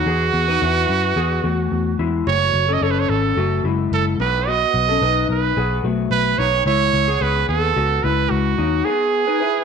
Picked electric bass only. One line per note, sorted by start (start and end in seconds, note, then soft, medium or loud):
0.06 0.29 E2 medium
0.34 0.57 E2 medium
0.62 0.84 E2 medium
0.89 1.12 F#2 medium
1.16 1.39 E2 medium
1.44 1.67 E2 medium
1.72 1.94 E2 medium
1.99 2.22 E2 medium
2.27 2.49 F#1 medium
2.54 2.76 F#1 medium
2.81 3.04 F#1 medium
3.09 3.32 G#1 medium
3.37 3.59 F#1 medium
3.64 3.87 F#1 medium
3.92 4.14 F#1 medium
4.18 4.64 B1 medium
4.74 4.97 B1 medium
5.02 5.24 B1 medium
5.29 5.51 B1 medium
5.57 5.79 B1 medium
5.84 6.06 B1 medium
6.11 6.33 B1 medium
6.38 6.61 B1 medium
6.66 6.88 C#2 medium
6.93 7.16 C#2 medium
7.21 7.43 C#2 medium
7.49 7.71 D#2 medium
7.76 7.99 C#2 medium
8.04 8.26 C#2 medium
8.31 8.54 C#2 medium
8.58 8.81 D#2 medium